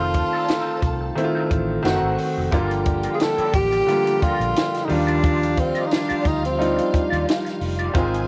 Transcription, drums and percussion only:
0.14 kick, closed hi-hat
0.48 snare, closed hi-hat
0.82 kick, closed hi-hat
1.18 closed hi-hat
1.51 kick, closed hi-hat
1.85 snare, closed hi-hat
2.18 open hi-hat
2.52 kick, closed hi-hat
2.71 closed hi-hat
2.85 kick, closed hi-hat
3.03 closed hi-hat
3.20 snare, closed hi-hat
3.38 closed hi-hat
3.54 kick, closed hi-hat
3.72 closed hi-hat
3.88 closed hi-hat
4.07 closed hi-hat
4.22 kick, closed hi-hat
4.41 closed hi-hat
4.56 snare, closed hi-hat
4.74 snare, closed hi-hat
4.89 open hi-hat
5.08 closed hi-hat
5.24 kick, closed hi-hat
5.43 closed hi-hat
5.57 kick, closed hi-hat
5.75 closed hi-hat
5.91 snare, closed hi-hat
6.10 closed hi-hat
6.25 kick, closed hi-hat
6.45 closed hi-hat
6.61 closed hi-hat
6.78 closed hi-hat
6.94 kick, closed hi-hat
7.13 closed hi-hat
7.28 snare, closed hi-hat
7.46 snare, closed hi-hat
7.61 open hi-hat
7.79 closed hi-hat
7.95 kick, closed hi-hat
8.14 closed hi-hat

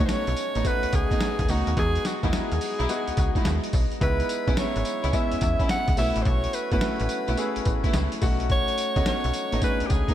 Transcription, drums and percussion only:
0.09 snare, closed hi-hat, tambourine
0.27 closed hi-hat
0.37 closed hi-hat, tambourine
0.55 closed hi-hat
0.65 kick, closed hi-hat, tambourine
0.83 closed hi-hat
0.93 kick, closed hi-hat, tambourine
1.11 kick, closed hi-hat
1.21 snare, closed hi-hat, tambourine
1.39 kick, closed hi-hat
1.48 open hi-hat, tambourine
1.67 closed hi-hat
1.77 kick, closed hi-hat
1.95 closed hi-hat
2.05 snare, closed hi-hat, tambourine
2.23 kick, closed hi-hat
2.33 snare, closed hi-hat, tambourine
2.52 closed hi-hat
2.61 open hi-hat, tambourine
2.80 closed hi-hat
2.89 closed hi-hat, tambourine
3.08 closed hi-hat
3.17 kick, closed hi-hat, tambourine
3.35 kick, closed hi-hat
3.45 snare, closed hi-hat, tambourine
3.64 closed hi-hat
3.73 kick, open hi-hat, tambourine
3.92 closed hi-hat
4.01 kick, closed hi-hat
4.20 closed hi-hat
4.29 closed hi-hat, tambourine
4.48 kick, closed hi-hat
4.57 snare, closed hi-hat, tambourine
4.76 closed hi-hat
4.85 closed hi-hat, tambourine
5.04 closed hi-hat
5.13 kick, closed hi-hat, tambourine
5.32 closed hi-hat
5.41 kick, closed hi-hat, tambourine
5.59 kick, closed hi-hat
5.69 snare, closed hi-hat, tambourine
5.88 kick, closed hi-hat
5.97 open hi-hat, tambourine
6.16 closed hi-hat
6.25 kick, closed hi-hat
6.44 closed hi-hat
6.53 closed hi-hat, tambourine
6.72 kick, closed hi-hat
6.81 snare, closed hi-hat, tambourine
7.00 closed hi-hat
7.09 closed hi-hat, tambourine
7.28 closed hi-hat
7.37 closed hi-hat, tambourine
7.56 closed hi-hat
7.65 kick, closed hi-hat, tambourine
7.84 kick, closed hi-hat
7.93 snare, closed hi-hat, tambourine
8.12 closed hi-hat
8.21 kick, open hi-hat, tambourine
8.40 closed hi-hat
8.50 kick, closed hi-hat
8.68 closed hi-hat
8.78 closed hi-hat, tambourine
8.96 kick, closed hi-hat
9.06 snare, closed hi-hat, tambourine
9.24 closed hi-hat
9.34 closed hi-hat, tambourine
9.52 closed hi-hat
9.62 kick, closed hi-hat, tambourine
9.80 closed hi-hat
9.90 kick, closed hi-hat, tambourine
10.08 kick, closed hi-hat

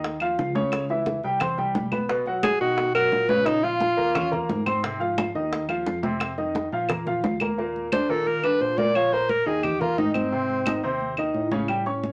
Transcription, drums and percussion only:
0.04 high bongo, high conga
0.20 high bongo, high conga, claves
0.39 high bongo, low bongo, high conga
0.55 high bongo, high conga
0.72 high bongo, high conga, claves
0.89 high bongo, high conga
1.06 high bongo, high conga
1.24 high conga
1.40 high bongo, high conga, low conga, claves
1.58 high bongo, high conga
1.75 high bongo, low bongo, high conga
1.92 high bongo, high conga, claves
2.09 high bongo, high conga
2.26 high bongo, high conga
2.43 high bongo, high conga, claves
2.61 high conga
2.78 high bongo, high conga
2.95 high bongo, high conga, claves
3.12 high bongo, low bongo, high conga
3.29 high bongo, high conga
3.46 high bongo, high conga, claves
3.64 high bongo, high conga
3.80 high bongo, high conga
3.98 high conga
4.15 high bongo, high conga, low conga, claves
4.33 high bongo, high conga, low conga
4.49 high bongo, low bongo, high conga
4.66 high bongo, high conga, claves
4.84 high bongo, high conga
5.01 high bongo, high conga
5.18 high bongo, high conga, claves
5.35 high conga
5.53 high bongo, high conga
5.69 high bongo, high conga, claves
5.86 high bongo, low bongo, high conga
6.03 high bongo, high conga
6.20 high bongo, high conga, claves
6.38 high bongo, high conga
6.55 high bongo, high conga
6.72 high conga
6.89 high bongo, high conga, low conga, claves
7.07 high bongo, high conga, low conga
7.24 high bongo, low bongo, high conga
7.40 high bongo, high conga, claves
7.59 high conga
7.76 high conga
7.92 high conga, claves
8.10 high conga
8.27 high conga
8.44 high conga, claves
8.61 high conga
8.78 high conga
8.95 high conga, claves
9.12 high conga
9.29 high conga
9.47 high conga
9.63 high conga, low conga, claves
9.81 high conga, low conga
9.98 high conga
10.14 high conga, claves
10.33 high conga
10.50 high conga
10.66 high conga, claves
10.83 high conga
11.00 high conga
11.17 high conga, claves
11.34 high conga
11.52 high conga
11.68 high conga, claves
11.86 high conga
12.04 high conga

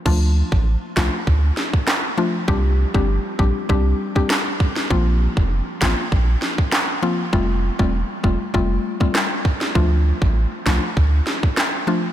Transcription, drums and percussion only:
0.06 kick, crash
0.52 kick
0.97 kick, snare, clap
1.27 kick
1.57 snare
1.73 kick
1.87 cross-stick, snare, clap
2.48 kick
2.94 kick
3.39 kick
3.70 kick
4.16 kick
4.30 cross-stick, snare, clap
4.60 kick
4.76 snare
4.91 kick
5.37 kick
5.81 kick, snare, clap
6.12 kick
6.42 snare
6.58 kick
6.72 cross-stick, snare, clap
7.33 kick
7.79 kick
8.24 kick
8.54 kick
9.01 kick
9.15 cross-stick, snare, clap
9.45 kick
9.61 snare
9.75 kick
10.22 kick
10.66 kick, snare, clap
10.97 kick
11.27 snare
11.43 kick
11.57 cross-stick, snare, clap

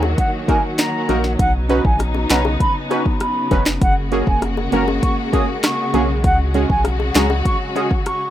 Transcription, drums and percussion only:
0.03 high bongo
0.18 kick, closed hi-hat
0.48 kick, closed hi-hat, high bongo
0.78 snare, clap, closed hi-hat
1.09 closed hi-hat, low bongo
1.24 snare
1.39 kick, closed hi-hat
1.70 closed hi-hat, high bongo
1.85 kick
1.99 cross-stick, closed hi-hat, high bongo
2.15 high bongo
2.30 snare, clap, closed hi-hat, low bongo
2.45 high bongo
2.60 kick, closed hi-hat
2.91 closed hi-hat, high bongo
3.06 kick
3.20 cross-stick, closed hi-hat
3.51 kick, closed hi-hat, low bongo
3.66 snare, clap
3.81 kick, closed hi-hat
4.12 closed hi-hat, high bongo
4.27 kick
4.42 cross-stick, closed hi-hat, high bongo
4.57 high bongo
4.72 closed hi-hat, low bongo
4.88 high bongo
5.03 kick, closed hi-hat
5.33 kick, closed hi-hat, high bongo
5.63 cross-stick, snare, clap, closed hi-hat
5.94 closed hi-hat, low bongo
6.24 kick, closed hi-hat
6.54 closed hi-hat, high bongo
6.70 kick
6.84 cross-stick, closed hi-hat, high bongo
7.00 high bongo
7.15 snare, clap, closed hi-hat, low bongo
7.30 high bongo
7.45 kick, closed hi-hat
7.75 closed hi-hat, high bongo
7.91 kick
8.06 cross-stick, closed hi-hat

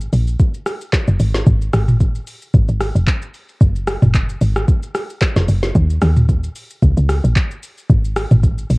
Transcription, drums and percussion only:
0.01 shaker
0.13 open hi-hat, shaker
0.27 shaker
0.40 kick, shaker
0.54 shaker
0.66 cross-stick, open hi-hat, shaker
0.81 shaker
0.93 kick, snare, clap, shaker
1.08 shaker
1.20 open hi-hat, shaker
1.35 snare, shaker
1.47 kick, shaker
1.62 shaker
1.73 cross-stick, open hi-hat, shaker
1.88 mid tom, shaker
2.00 kick, shaker
2.15 shaker
2.27 open hi-hat, shaker
2.42 shaker
2.54 kick, shaker
2.68 shaker
2.80 cross-stick, open hi-hat, shaker
2.96 shaker
3.07 kick, clap, shaker
3.22 shaker
3.34 open hi-hat, shaker
3.49 shaker
3.61 kick, shaker
3.76 shaker
3.87 cross-stick, open hi-hat, shaker
4.02 mid tom, shaker
4.14 kick, clap, shaker
4.29 shaker
4.41 open hi-hat, shaker
4.56 cross-stick, shaker
4.68 kick, shaker
4.83 shaker
4.95 cross-stick, open hi-hat, shaker
5.10 shaker
5.22 kick, snare, clap, shaker
5.36 snare, shaker
5.48 open hi-hat, shaker
5.63 snare, shaker
5.75 kick, shaker
5.90 shaker
6.02 cross-stick, open hi-hat, shaker
6.17 mid tom, shaker
6.29 kick, shaker
6.44 shaker
6.56 open hi-hat, shaker
6.70 shaker
6.82 kick, shaker
6.97 shaker
7.09 cross-stick, open hi-hat, shaker
7.24 shaker
7.36 kick, clap, shaker
7.51 shaker
7.63 open hi-hat, shaker
7.78 shaker
7.90 kick, shaker
8.05 shaker
8.16 cross-stick, open hi-hat, shaker
8.31 mid tom, shaker
8.43 kick, shaker
8.58 shaker
8.70 open hi-hat, shaker

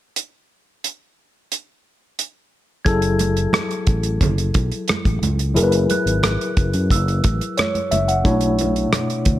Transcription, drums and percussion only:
0.16 closed hi-hat
0.84 closed hi-hat
1.52 closed hi-hat
2.19 closed hi-hat
2.86 kick, closed hi-hat
3.02 closed hi-hat
3.19 closed hi-hat, muted conga
3.37 closed hi-hat
3.53 cross-stick, closed hi-hat, high conga
3.71 closed hi-hat
3.87 kick, closed hi-hat
4.03 closed hi-hat
4.21 kick, closed hi-hat, low conga
4.38 closed hi-hat
4.54 kick, closed hi-hat, muted conga
4.72 closed hi-hat
4.88 cross-stick, closed hi-hat, high conga
5.05 kick, closed hi-hat, high conga
5.23 closed hi-hat, high conga
5.39 closed hi-hat
5.56 closed hi-hat, muted conga
5.72 closed hi-hat
5.90 closed hi-hat, muted conga
6.07 closed hi-hat
6.23 cross-stick, closed hi-hat, high conga
6.41 closed hi-hat
6.57 kick, closed hi-hat
6.73 closed hi-hat
6.90 kick, closed hi-hat
7.08 closed hi-hat
7.24 kick, closed hi-hat, muted conga
7.41 closed hi-hat
7.58 cross-stick, closed hi-hat, high conga
7.75 closed hi-hat, high conga
7.92 closed hi-hat, high conga
8.09 closed hi-hat
8.25 kick, closed hi-hat, muted conga
8.41 closed hi-hat
8.59 closed hi-hat, muted conga
8.76 closed hi-hat
8.93 cross-stick, closed hi-hat, high conga
9.10 closed hi-hat
9.25 kick, closed hi-hat

